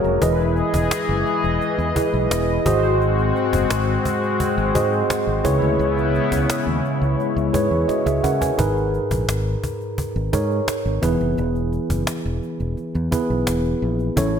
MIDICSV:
0, 0, Header, 1, 7, 480
1, 0, Start_track
1, 0, Key_signature, 5, "minor"
1, 0, Tempo, 697674
1, 149, Time_signature, 4, 2, 24, 8
1, 9903, End_track
2, 0, Start_track
2, 0, Title_t, "Tine electric piano"
2, 0, Program_c, 0, 4
2, 0, Control_c, 0, 64, 127
2, 0, Note_on_c, 0, 66, 78
2, 0, Note_on_c, 0, 68, 72
2, 0, Note_on_c, 0, 70, 66
2, 0, Note_on_c, 0, 73, 86
2, 0, Note_on_c, 0, 76, 90
2, 81, Note_off_c, 0, 66, 0
2, 82, Note_off_c, 0, 68, 0
2, 84, Note_off_c, 0, 70, 0
2, 85, Note_off_c, 0, 73, 0
2, 147, Note_on_c, 0, 64, 82
2, 150, Note_on_c, 0, 68, 80
2, 151, Note_on_c, 0, 52, 77
2, 151, Note_on_c, 0, 71, 81
2, 154, Note_on_c, 0, 75, 93
2, 157, Control_c, 0, 64, 0
2, 163, Note_off_c, 0, 76, 0
2, 262, Control_c, 0, 64, 127
2, 842, Note_off_c, 0, 52, 0
2, 844, Note_off_c, 0, 64, 0
2, 846, Note_off_c, 0, 68, 0
2, 846, Note_off_c, 0, 71, 0
2, 848, Note_off_c, 0, 75, 0
2, 1345, Note_on_c, 0, 64, 79
2, 1349, Note_on_c, 0, 68, 72
2, 1352, Note_on_c, 0, 71, 72
2, 1353, Note_on_c, 0, 75, 84
2, 1695, Note_off_c, 0, 64, 0
2, 1697, Note_off_c, 0, 68, 0
2, 1698, Note_off_c, 0, 71, 0
2, 1699, Note_off_c, 0, 75, 0
2, 1826, Note_on_c, 0, 66, 88
2, 1829, Note_on_c, 0, 68, 83
2, 1830, Note_on_c, 0, 44, 75
2, 1832, Note_on_c, 0, 72, 83
2, 1834, Note_on_c, 0, 75, 95
2, 1838, Control_c, 0, 64, 0
2, 1953, Control_c, 0, 64, 127
2, 2522, Note_off_c, 0, 44, 0
2, 2595, Note_off_c, 0, 66, 0
2, 2597, Note_off_c, 0, 68, 0
2, 2598, Note_off_c, 0, 72, 0
2, 2599, Note_off_c, 0, 75, 0
2, 3264, Note_on_c, 0, 66, 74
2, 3265, Note_on_c, 0, 68, 72
2, 3267, Note_on_c, 0, 72, 77
2, 3272, Note_on_c, 0, 75, 87
2, 3615, Note_off_c, 0, 66, 0
2, 3615, Note_off_c, 0, 68, 0
2, 3616, Note_off_c, 0, 72, 0
2, 3618, Note_off_c, 0, 75, 0
2, 3743, Note_on_c, 0, 64, 87
2, 3744, Note_on_c, 0, 68, 79
2, 3746, Note_on_c, 0, 49, 70
2, 3748, Note_on_c, 0, 71, 81
2, 3750, Note_on_c, 0, 73, 95
2, 3757, Control_c, 0, 64, 0
2, 3861, Control_c, 0, 64, 127
2, 4440, Note_off_c, 0, 49, 0
2, 4514, Note_off_c, 0, 64, 0
2, 4514, Note_off_c, 0, 68, 0
2, 4516, Note_off_c, 0, 71, 0
2, 4517, Note_off_c, 0, 73, 0
2, 5180, Note_on_c, 0, 64, 73
2, 5182, Note_on_c, 0, 68, 70
2, 5184, Note_on_c, 0, 71, 68
2, 5189, Note_on_c, 0, 73, 86
2, 5422, Note_on_c, 0, 75, 60
2, 5425, Note_off_c, 0, 68, 0
2, 5425, Note_on_c, 0, 66, 55
2, 5426, Note_off_c, 0, 71, 0
2, 5429, Note_off_c, 0, 73, 0
2, 5532, Note_off_c, 0, 64, 0
2, 5539, Note_off_c, 0, 75, 0
2, 5541, Note_off_c, 0, 66, 0
2, 5545, Note_on_c, 0, 76, 66
2, 5550, Note_on_c, 0, 68, 61
2, 5661, Note_off_c, 0, 76, 0
2, 5663, Note_off_c, 0, 68, 0
2, 5667, Note_on_c, 0, 78, 68
2, 5672, Note_on_c, 0, 70, 55
2, 5781, Note_off_c, 0, 78, 0
2, 5784, Note_off_c, 0, 70, 0
2, 5786, Note_on_c, 0, 80, 63
2, 5789, Note_on_c, 0, 71, 51
2, 5901, Note_on_c, 0, 63, 79
2, 5902, Note_off_c, 0, 71, 0
2, 5903, Note_on_c, 0, 68, 77
2, 5906, Note_on_c, 0, 44, 69
2, 5907, Note_on_c, 0, 70, 75
2, 5910, Note_on_c, 0, 71, 86
2, 5918, Control_c, 0, 64, 0
2, 6015, Note_off_c, 0, 80, 0
2, 6049, Control_c, 0, 64, 127
2, 6600, Note_off_c, 0, 44, 0
2, 6601, Note_off_c, 0, 63, 0
2, 6602, Note_off_c, 0, 68, 0
2, 6604, Note_off_c, 0, 70, 0
2, 6606, Note_off_c, 0, 71, 0
2, 7104, Note_on_c, 0, 63, 76
2, 7108, Note_on_c, 0, 68, 69
2, 7111, Note_on_c, 0, 70, 68
2, 7112, Note_on_c, 0, 73, 84
2, 7579, Note_off_c, 0, 68, 0
2, 7580, Note_on_c, 0, 59, 80
2, 7583, Note_on_c, 0, 64, 76
2, 7584, Note_on_c, 0, 52, 69
2, 7587, Note_off_c, 0, 63, 0
2, 7587, Note_on_c, 0, 68, 75
2, 7588, Note_on_c, 0, 71, 92
2, 7590, Note_off_c, 0, 70, 0
2, 7590, Note_off_c, 0, 73, 0
2, 7597, Control_c, 0, 64, 0
2, 7717, Control_c, 0, 64, 127
2, 8279, Note_off_c, 0, 52, 0
2, 8352, Note_off_c, 0, 59, 0
2, 8354, Note_off_c, 0, 64, 0
2, 8356, Note_off_c, 0, 68, 0
2, 8356, Note_off_c, 0, 71, 0
2, 9021, Note_on_c, 0, 59, 76
2, 9024, Note_on_c, 0, 64, 68
2, 9026, Note_on_c, 0, 68, 68
2, 9028, Note_on_c, 0, 71, 82
2, 9547, Note_off_c, 0, 59, 0
2, 9549, Note_off_c, 0, 64, 0
2, 9550, Note_off_c, 0, 68, 0
2, 9550, Note_off_c, 0, 71, 0
2, 9744, Note_on_c, 0, 61, 86
2, 9748, Note_on_c, 0, 45, 71
2, 9748, Note_on_c, 0, 64, 73
2, 9751, Note_on_c, 0, 69, 74
2, 9755, Note_on_c, 0, 73, 93
2, 9758, Control_c, 0, 64, 0
2, 9885, Control_c, 0, 64, 127
2, 9903, Note_off_c, 0, 45, 0
2, 9903, Note_off_c, 0, 61, 0
2, 9903, Note_off_c, 0, 64, 0
2, 9903, Note_off_c, 0, 69, 0
2, 9903, Note_off_c, 0, 73, 0
2, 9903, End_track
3, 0, Start_track
3, 0, Title_t, "Analog polysynth"
3, 0, Program_c, 1, 90
3, 0, Note_on_c, 1, 54, 66
3, 0, Note_on_c, 1, 61, 68
3, 0, Note_on_c, 1, 70, 76
3, 121, Note_off_c, 1, 54, 0
3, 121, Note_off_c, 1, 61, 0
3, 121, Note_off_c, 1, 70, 0
3, 148, Note_on_c, 1, 56, 67
3, 148, Note_on_c, 1, 64, 74
3, 148, Note_on_c, 1, 71, 81
3, 1801, Note_off_c, 1, 56, 0
3, 1801, Note_off_c, 1, 64, 0
3, 1801, Note_off_c, 1, 71, 0
3, 1828, Note_on_c, 1, 56, 76
3, 1828, Note_on_c, 1, 66, 72
3, 1828, Note_on_c, 1, 72, 87
3, 3721, Note_off_c, 1, 56, 0
3, 3721, Note_off_c, 1, 66, 0
3, 3721, Note_off_c, 1, 72, 0
3, 3745, Note_on_c, 1, 56, 75
3, 3746, Note_on_c, 1, 64, 77
3, 3747, Note_on_c, 1, 73, 86
3, 5879, Note_off_c, 1, 56, 0
3, 5880, Note_off_c, 1, 64, 0
3, 5880, Note_off_c, 1, 73, 0
3, 9903, End_track
4, 0, Start_track
4, 0, Title_t, "Analog synth pad"
4, 0, Program_c, 2, 89
4, 0, Note_on_c, 2, 56, 88
4, 0, Note_on_c, 2, 58, 80
4, 0, Note_on_c, 2, 66, 97
4, 128, Note_off_c, 2, 56, 0
4, 128, Note_off_c, 2, 66, 0
4, 129, Note_off_c, 2, 58, 0
4, 146, Note_on_c, 2, 52, 86
4, 147, Note_on_c, 2, 68, 98
4, 148, Note_on_c, 2, 75, 81
4, 1810, Note_off_c, 2, 52, 0
4, 1811, Note_off_c, 2, 68, 0
4, 1811, Note_off_c, 2, 75, 0
4, 1826, Note_on_c, 2, 56, 85
4, 1827, Note_on_c, 2, 60, 79
4, 1828, Note_on_c, 2, 66, 96
4, 3728, Note_off_c, 2, 56, 0
4, 3729, Note_off_c, 2, 60, 0
4, 3729, Note_off_c, 2, 66, 0
4, 3748, Note_on_c, 2, 49, 84
4, 3748, Note_on_c, 2, 59, 79
4, 3748, Note_on_c, 2, 64, 93
4, 5887, Note_off_c, 2, 49, 0
4, 5887, Note_off_c, 2, 59, 0
4, 5887, Note_off_c, 2, 64, 0
4, 9903, End_track
5, 0, Start_track
5, 0, Title_t, "Fingered electric bass"
5, 0, Program_c, 3, 33
5, 29, Note_on_c, 3, 29, 87
5, 119, Note_off_c, 3, 29, 0
5, 150, Note_on_c, 3, 28, 109
5, 420, Note_off_c, 3, 28, 0
5, 509, Note_on_c, 3, 28, 84
5, 599, Note_off_c, 3, 28, 0
5, 750, Note_on_c, 3, 30, 96
5, 839, Note_off_c, 3, 30, 0
5, 990, Note_on_c, 3, 28, 86
5, 1080, Note_off_c, 3, 28, 0
5, 1227, Note_on_c, 3, 40, 94
5, 1318, Note_off_c, 3, 40, 0
5, 1469, Note_on_c, 3, 35, 94
5, 1559, Note_off_c, 3, 35, 0
5, 1589, Note_on_c, 3, 28, 97
5, 1769, Note_off_c, 3, 28, 0
5, 1829, Note_on_c, 3, 32, 96
5, 2279, Note_off_c, 3, 32, 0
5, 2430, Note_on_c, 3, 30, 82
5, 2519, Note_off_c, 3, 30, 0
5, 2550, Note_on_c, 3, 32, 91
5, 2729, Note_off_c, 3, 32, 0
5, 3149, Note_on_c, 3, 32, 88
5, 3239, Note_off_c, 3, 32, 0
5, 3270, Note_on_c, 3, 44, 88
5, 3450, Note_off_c, 3, 44, 0
5, 3627, Note_on_c, 3, 32, 77
5, 3718, Note_off_c, 3, 32, 0
5, 3748, Note_on_c, 3, 37, 102
5, 3838, Note_off_c, 3, 37, 0
5, 3865, Note_on_c, 3, 38, 94
5, 3957, Note_off_c, 3, 38, 0
5, 3986, Note_on_c, 3, 37, 114
5, 4257, Note_off_c, 3, 37, 0
5, 4349, Note_on_c, 3, 37, 89
5, 4439, Note_off_c, 3, 37, 0
5, 4586, Note_on_c, 3, 39, 85
5, 4677, Note_off_c, 3, 39, 0
5, 4826, Note_on_c, 3, 37, 82
5, 4917, Note_off_c, 3, 37, 0
5, 5067, Note_on_c, 3, 37, 89
5, 5157, Note_off_c, 3, 37, 0
5, 5189, Note_on_c, 3, 44, 84
5, 5279, Note_off_c, 3, 44, 0
5, 5304, Note_on_c, 3, 40, 87
5, 5396, Note_off_c, 3, 40, 0
5, 5546, Note_on_c, 3, 37, 87
5, 5637, Note_off_c, 3, 37, 0
5, 5667, Note_on_c, 3, 49, 90
5, 5847, Note_off_c, 3, 49, 0
5, 5909, Note_on_c, 3, 32, 100
5, 6179, Note_off_c, 3, 32, 0
5, 6268, Note_on_c, 3, 34, 86
5, 6358, Note_off_c, 3, 34, 0
5, 6387, Note_on_c, 3, 32, 85
5, 6568, Note_off_c, 3, 32, 0
5, 6988, Note_on_c, 3, 32, 95
5, 7078, Note_off_c, 3, 32, 0
5, 7109, Note_on_c, 3, 44, 92
5, 7289, Note_off_c, 3, 44, 0
5, 7468, Note_on_c, 3, 32, 82
5, 7558, Note_off_c, 3, 32, 0
5, 7587, Note_on_c, 3, 28, 89
5, 7678, Note_off_c, 3, 28, 0
5, 7711, Note_on_c, 3, 29, 88
5, 7800, Note_off_c, 3, 29, 0
5, 7830, Note_on_c, 3, 28, 102
5, 8100, Note_off_c, 3, 28, 0
5, 8187, Note_on_c, 3, 30, 85
5, 8278, Note_off_c, 3, 30, 0
5, 8432, Note_on_c, 3, 28, 86
5, 8520, Note_off_c, 3, 28, 0
5, 8670, Note_on_c, 3, 28, 78
5, 8760, Note_off_c, 3, 28, 0
5, 8911, Note_on_c, 3, 40, 93
5, 9000, Note_off_c, 3, 40, 0
5, 9151, Note_on_c, 3, 35, 84
5, 9240, Note_off_c, 3, 35, 0
5, 9269, Note_on_c, 3, 28, 89
5, 9449, Note_off_c, 3, 28, 0
5, 9509, Note_on_c, 3, 34, 87
5, 9689, Note_off_c, 3, 34, 0
5, 9749, Note_on_c, 3, 33, 105
5, 9903, Note_off_c, 3, 33, 0
5, 9903, End_track
6, 0, Start_track
6, 0, Title_t, "Cajon"
6, 31, Note_on_c, 9, 38, 29
6, 99, Note_off_c, 9, 38, 0
6, 149, Note_on_c, 9, 36, 108
6, 218, Note_off_c, 9, 36, 0
6, 272, Note_on_c, 9, 38, 30
6, 340, Note_off_c, 9, 38, 0
6, 387, Note_on_c, 9, 38, 44
6, 455, Note_off_c, 9, 38, 0
6, 508, Note_on_c, 9, 36, 89
6, 576, Note_off_c, 9, 36, 0
6, 628, Note_on_c, 9, 38, 110
6, 696, Note_off_c, 9, 38, 0
6, 750, Note_on_c, 9, 38, 25
6, 818, Note_off_c, 9, 38, 0
6, 869, Note_on_c, 9, 38, 38
6, 938, Note_off_c, 9, 38, 0
6, 989, Note_on_c, 9, 38, 29
6, 1058, Note_off_c, 9, 38, 0
6, 1109, Note_on_c, 9, 38, 46
6, 1178, Note_off_c, 9, 38, 0
6, 1230, Note_on_c, 9, 38, 32
6, 1299, Note_off_c, 9, 38, 0
6, 1349, Note_on_c, 9, 36, 94
6, 1418, Note_off_c, 9, 36, 0
6, 1591, Note_on_c, 9, 38, 109
6, 1660, Note_off_c, 9, 38, 0
6, 1712, Note_on_c, 9, 38, 28
6, 1781, Note_off_c, 9, 38, 0
6, 1829, Note_on_c, 9, 36, 100
6, 1898, Note_off_c, 9, 36, 0
6, 2073, Note_on_c, 9, 38, 54
6, 2142, Note_off_c, 9, 38, 0
6, 2194, Note_on_c, 9, 38, 31
6, 2262, Note_off_c, 9, 38, 0
6, 2309, Note_on_c, 9, 38, 44
6, 2378, Note_off_c, 9, 38, 0
6, 2429, Note_on_c, 9, 36, 85
6, 2498, Note_off_c, 9, 36, 0
6, 2549, Note_on_c, 9, 38, 117
6, 2617, Note_off_c, 9, 38, 0
6, 2671, Note_on_c, 9, 38, 25
6, 2740, Note_off_c, 9, 38, 0
6, 2789, Note_on_c, 9, 36, 84
6, 2858, Note_off_c, 9, 36, 0
6, 2913, Note_on_c, 9, 38, 29
6, 2981, Note_off_c, 9, 38, 0
6, 3028, Note_on_c, 9, 36, 88
6, 3096, Note_off_c, 9, 36, 0
6, 3151, Note_on_c, 9, 38, 33
6, 3219, Note_off_c, 9, 38, 0
6, 3269, Note_on_c, 9, 36, 96
6, 3338, Note_off_c, 9, 36, 0
6, 3392, Note_on_c, 9, 38, 25
6, 3461, Note_off_c, 9, 38, 0
6, 3510, Note_on_c, 9, 38, 112
6, 3578, Note_off_c, 9, 38, 0
6, 3630, Note_on_c, 9, 38, 29
6, 3699, Note_off_c, 9, 38, 0
6, 3748, Note_on_c, 9, 36, 101
6, 3816, Note_off_c, 9, 36, 0
6, 3869, Note_on_c, 9, 38, 29
6, 3937, Note_off_c, 9, 38, 0
6, 3989, Note_on_c, 9, 38, 55
6, 4058, Note_off_c, 9, 38, 0
6, 4112, Note_on_c, 9, 38, 31
6, 4181, Note_off_c, 9, 38, 0
6, 4229, Note_on_c, 9, 38, 43
6, 4298, Note_off_c, 9, 38, 0
6, 4348, Note_on_c, 9, 36, 88
6, 4416, Note_off_c, 9, 36, 0
6, 4469, Note_on_c, 9, 38, 108
6, 4538, Note_off_c, 9, 38, 0
6, 4588, Note_on_c, 9, 38, 26
6, 4657, Note_off_c, 9, 38, 0
6, 4712, Note_on_c, 9, 38, 35
6, 4781, Note_off_c, 9, 38, 0
6, 4832, Note_on_c, 9, 38, 26
6, 4901, Note_off_c, 9, 38, 0
6, 4953, Note_on_c, 9, 38, 43
6, 5022, Note_off_c, 9, 38, 0
6, 5071, Note_on_c, 9, 38, 30
6, 5140, Note_off_c, 9, 38, 0
6, 5188, Note_on_c, 9, 36, 89
6, 5257, Note_off_c, 9, 36, 0
6, 5310, Note_on_c, 9, 38, 24
6, 5379, Note_off_c, 9, 38, 0
6, 5428, Note_on_c, 9, 38, 56
6, 5430, Note_off_c, 9, 38, 0
6, 5430, Note_on_c, 9, 38, 47
6, 5499, Note_off_c, 9, 38, 0
6, 5550, Note_on_c, 9, 38, 60
6, 5618, Note_off_c, 9, 38, 0
6, 5669, Note_on_c, 9, 36, 84
6, 5738, Note_off_c, 9, 36, 0
6, 5790, Note_on_c, 9, 36, 85
6, 5859, Note_off_c, 9, 36, 0
6, 5908, Note_on_c, 9, 36, 102
6, 5977, Note_off_c, 9, 36, 0
6, 6031, Note_on_c, 9, 38, 28
6, 6100, Note_off_c, 9, 38, 0
6, 6151, Note_on_c, 9, 38, 41
6, 6220, Note_off_c, 9, 38, 0
6, 6267, Note_on_c, 9, 36, 86
6, 6336, Note_off_c, 9, 36, 0
6, 6389, Note_on_c, 9, 38, 110
6, 6458, Note_off_c, 9, 38, 0
6, 6512, Note_on_c, 9, 38, 25
6, 6581, Note_off_c, 9, 38, 0
6, 6629, Note_on_c, 9, 36, 78
6, 6698, Note_off_c, 9, 36, 0
6, 6750, Note_on_c, 9, 38, 28
6, 6818, Note_off_c, 9, 38, 0
6, 6867, Note_on_c, 9, 36, 84
6, 6935, Note_off_c, 9, 36, 0
6, 6991, Note_on_c, 9, 38, 28
6, 7060, Note_off_c, 9, 38, 0
6, 7108, Note_on_c, 9, 36, 91
6, 7177, Note_off_c, 9, 36, 0
6, 7230, Note_on_c, 9, 38, 24
6, 7298, Note_off_c, 9, 38, 0
6, 7347, Note_on_c, 9, 38, 107
6, 7416, Note_off_c, 9, 38, 0
6, 7468, Note_on_c, 9, 38, 29
6, 7537, Note_off_c, 9, 38, 0
6, 7586, Note_on_c, 9, 36, 94
6, 7655, Note_off_c, 9, 36, 0
6, 7706, Note_on_c, 9, 38, 30
6, 7775, Note_off_c, 9, 38, 0
6, 7825, Note_on_c, 9, 38, 54
6, 7894, Note_off_c, 9, 38, 0
6, 7947, Note_on_c, 9, 38, 29
6, 8016, Note_off_c, 9, 38, 0
6, 8067, Note_on_c, 9, 38, 41
6, 8136, Note_off_c, 9, 38, 0
6, 8187, Note_on_c, 9, 36, 82
6, 8256, Note_off_c, 9, 36, 0
6, 8305, Note_on_c, 9, 38, 113
6, 8373, Note_off_c, 9, 38, 0
6, 8427, Note_on_c, 9, 38, 24
6, 8496, Note_off_c, 9, 38, 0
6, 8550, Note_on_c, 9, 38, 35
6, 8618, Note_off_c, 9, 38, 0
6, 8667, Note_on_c, 9, 38, 26
6, 8736, Note_off_c, 9, 38, 0
6, 8787, Note_on_c, 9, 38, 41
6, 8856, Note_off_c, 9, 38, 0
6, 8907, Note_on_c, 9, 38, 30
6, 8976, Note_off_c, 9, 38, 0
6, 9027, Note_on_c, 9, 36, 97
6, 9096, Note_off_c, 9, 36, 0
6, 9151, Note_on_c, 9, 38, 24
6, 9219, Note_off_c, 9, 38, 0
6, 9267, Note_on_c, 9, 38, 100
6, 9336, Note_off_c, 9, 38, 0
6, 9390, Note_on_c, 9, 38, 29
6, 9459, Note_off_c, 9, 38, 0
6, 9627, Note_on_c, 9, 38, 29
6, 9696, Note_off_c, 9, 38, 0
6, 9748, Note_on_c, 9, 36, 109
6, 9817, Note_off_c, 9, 36, 0
6, 9873, Note_on_c, 9, 38, 29
6, 9903, Note_off_c, 9, 38, 0
6, 9903, End_track
7, 0, Start_track
7, 0, Title_t, "Muted fingered electric bass strokes"
7, 1109, Note_on_c, 9, 29, 44
7, 1178, Note_off_c, 9, 29, 0
7, 5426, Note_on_c, 9, 29, 48
7, 5495, Note_off_c, 9, 29, 0
7, 8791, Note_on_c, 9, 29, 42
7, 8860, Note_off_c, 9, 29, 0
7, 9903, End_track
0, 0, End_of_file